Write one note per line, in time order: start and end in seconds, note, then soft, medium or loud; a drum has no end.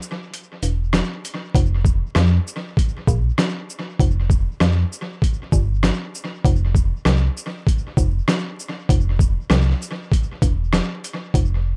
0.02 shaker medium
0.34 closed hi-hat medium
0.63 1.01 E1 medium
0.63 closed hi-hat medium
0.63 shaker medium
0.93 cross-stick loud
0.93 snare loud
0.93 closed hi-hat medium
1.25 closed hi-hat medium
1.25 shaker medium
1.55 2.02 F1 loud
1.55 kick loud
1.55 closed hi-hat medium
1.85 kick loud
1.85 shaker medium
2.15 2.40 F2 loud
2.15 cross-stick loud
2.15 snare loud
2.15 closed hi-hat medium
2.47 shaker medium
2.77 kick loud
2.77 closed hi-hat medium
3.07 3.31 A#1 medium
3.07 kick medium
3.07 shaker medium
3.38 cross-stick medium
3.38 snare loud
3.38 closed hi-hat medium
3.70 shaker medium
4.00 4.47 F1 loud
4.00 kick loud
4.00 closed hi-hat medium
4.30 kick loud
4.30 shaker medium
4.60 4.85 F2 medium
4.60 cross-stick loud
4.60 snare loud
4.60 closed hi-hat medium
4.92 shaker medium
5.22 kick medium
5.22 closed hi-hat medium
5.52 5.91 G1 loud
5.52 kick medium
5.52 shaker medium
5.83 cross-stick loud
5.83 snare loud
5.83 closed hi-hat medium
6.15 shaker medium
6.44 6.92 F1 loud
6.44 kick loud
6.44 closed hi-hat medium
6.75 kick loud
6.75 shaker medium
7.05 7.30 C2 medium
7.05 cross-stick loud
7.05 snare loud
7.05 closed hi-hat medium
7.37 shaker medium
7.67 kick loud
7.67 closed hi-hat medium
7.97 8.21 F1 loud
7.97 kick medium
7.97 shaker medium
8.28 cross-stick loud
8.28 snare loud
8.28 closed hi-hat medium
8.59 shaker medium
8.89 9.37 F1 loud
8.89 kick loud
8.89 closed hi-hat medium
9.19 kick loud
9.19 shaker medium
9.50 9.74 C2 loud
9.50 cross-stick medium
9.50 snare loud
9.50 closed hi-hat medium
9.70 snare soft
9.82 shaker medium
10.11 kick loud
10.11 closed hi-hat medium
10.42 10.81 E1 medium
10.42 kick medium
10.42 closed hi-hat medium
10.42 shaker medium
10.73 cross-stick loud
10.73 snare loud
10.73 closed hi-hat medium
11.04 closed hi-hat medium
11.04 shaker medium
11.34 11.76 F1 loud
11.34 kick loud
11.34 closed hi-hat medium